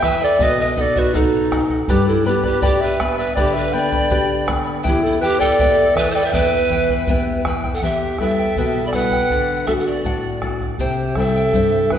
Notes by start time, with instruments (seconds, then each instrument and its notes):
Already playing: nylon-string guitar E2
0.01 nylon-string guitar E3, charango E4 E5 G5 B5, pan flute B4, clarinet E5, bombo rim, bombo low, shaker
0.21 charango E4 E5 B5, pan flute A4, clarinet D5
0.39 nylon-string guitar B2, charango B4 D#5 F#5, pan flute B4, clarinet D#5, bombo low, shaker
0.60 pan flute B4, clarinet D#5
0.76 nylon-string guitar D#4, pan flute A4, charango B4 D#5 F#5, bombo low, shaker
0.81 clarinet D5
0.95 pan flute F#4, clarinet B4, charango D#5 F#5, bombo low
1.14 pan flute D#4, nylon-string guitar F#4, clarinet A4, charango B4 D#5 F#5, bombo low, shaker
1.51 nylon-string guitar D#4, charango B4 D#5 F#5, bombo rim, bombo low, shaker
1.70 charango D#5 F#5, bombo low
1.88 nylon-string guitar G2, charango G4 B4 D5 G5 B5, pan flute G4, clarinet B4, bombo low, shaker
2.08 pan flute E4, clarinet A4
2.25 nylon-string guitar B3, pan flute G4, charango B4 D5 G5 B5, clarinet B4, shaker
2.44 pan flute G4, clarinet B4, charango B4 D5 B5, bombo low
2.62 charango G4 B4 D5 G5 B5, nylon-string guitar G4, pan flute G4, clarinet D5, bombo low, shaker
2.81 pan flute B4, clarinet E5
2.99 nylon-string guitar B3, charango B4 D5 G5 B5, bombo rim, bombo low, shaker
3.18 charango B4 D5 B5, pan flute B4, clarinet E5
3.35 nylon-string guitar D3, charango G4 B4 D5 G5 B5, pan flute G4, clarinet D5, bombo low, shaker
3.54 pan flute B4, clarinet E5
3.73 nylon-string guitar B3, charango B4 D5 G5 B5, pan flute D5, clarinet G5, shaker
3.92 charango B4 D5 B5, bombo low
4.10 charango G4 B4 D5 G5 B5, nylon-string guitar G4, bombo low, shaker
4.46 nylon-string guitar B3, charango B4 D5 G5 B5, bombo rim, bombo low, shaker
4.65 charango B4 D5 B5
4.83 nylon-string guitar E2, charango E4 G4 B4 E5 G5, pan flute E4, clarinet G4, bombo low, shaker
5.03 pan flute E4, clarinet A4
5.21 nylon-string guitar E3, charango E4 B4 E5 G5, pan flute G4, clarinet B4, shaker
5.39 charango E4 B4 G5, pan flute A4, clarinet D5, bombo low
5.59 nylon-string guitar B3, charango E4 G4 B4 E5 G5, bombo low, shaker
5.95 nylon-string guitar E3, charango E4 B4 E5 G5, pan flute B4, clarinet E5, bombo rim, bombo low, shaker
6.10 pan flute C5, clarinet E5
6.15 charango E4 B4 G5, pan flute A4, clarinet D5
6.25 pan flute E5, clarinet G5
6.33 nylon-string guitar E2, charango E4 G4 B4 E5 G5, pan flute B4, clarinet E5, bombo low, shaker
6.70 nylon-string guitar E3, charango E4 B4 E5 G5, bombo low, shaker
6.89 charango E4 B4 G5, bombo low
7.07 nylon-string guitar B3, charango E4 G4 B4 E5 G5, bombo low, shaker
7.45 nylon-string guitar E3, charango E4 B4 E5 G5, bombo rim, bombo low
7.64 charango E4 B4 G5, bombo low
7.74 clarinet A4, pan flute F#5
7.82 nylon-string guitar E2, charango E4 G4 B4 E5 G5, clarinet G4, pan flute E5, bombo low, shaker
8.18 nylon-string guitar G3 B3 E4, charango E4 B4 E5 G5, clarinet A4, pan flute E5, bombo rim, bombo low
8.39 charango E4 B4 G5
8.56 nylon-string guitar B2, charango E4 G4 B4 E5 G5, bombo low, shaker
8.86 clarinet D5, pan flute B5
8.92 nylon-string guitar G3 B3 E4, charango E4 B4 E5 G5, clarinet B4, pan flute F#5, bombo rim, bombo low
9.11 charango E4 B4 G5, bombo low
9.30 nylon-string guitar D3, charango A4 D5 F#5, bombo low, shaker
9.66 nylon-string guitar A3 D4 F#4, charango A4 D5 F#5, clarinet A4, pan flute E5, bombo rim, bombo low
9.80 clarinet A4, pan flute F#5
9.85 clarinet F#4, pan flute D5, charango D5 F#5
10.05 nylon-string guitar A2, charango A4 D5 F#5, bombo low, shaker
10.42 nylon-string guitar A3 D4 F#4, charango A4 D5 F#5, bombo rim, bombo low
10.60 charango D5 F#5, bombo low
10.79 nylon-string guitar C3, charango E4 G4 C5 E5 G5, clarinet G4, pan flute C5, bombo low, shaker
11.15 nylon-string guitar G3 C4 E4, charango E4 C5 E5 G5, clarinet A4, pan flute E5, bombo rim, bombo low
11.36 charango E4 C5 G5
11.53 nylon-string guitar G2, charango E4 G4 C5 E5 G5, bombo low, shaker
11.90 nylon-string guitar G3 C4 E4, charango E4 C5 E5 G5, clarinet B4, bombo rim, bombo low